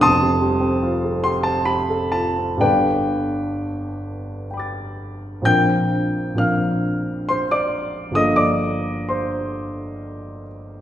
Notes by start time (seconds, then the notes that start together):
0.01 F1 F2 A5 C6 D#6
0.22 C3
0.42 G3
0.61 C4
0.83 F4
1.05 A4
1.24 G4 C6
1.43 C5 A5
1.65 G4 B5
1.90 A4
2.12 F4 A5
2.38 C4
2.57 G2 G3 B3 D4 A4 D5 G5
2.61 G1 B4
4.51 G5 B5
4.57 D6 A6
5.42 A#1 F3 C4 D4 G6
5.46 A#4 G5
6.35 A#1 F3 C4 D4 A#4 F6
6.39 F5
7.29 C5 C6
7.51 D5 D6
8.11 G1 F3 A#3 D4
8.15 A4 D#5 D#6
8.36 D5 D6
9.09 C5 C6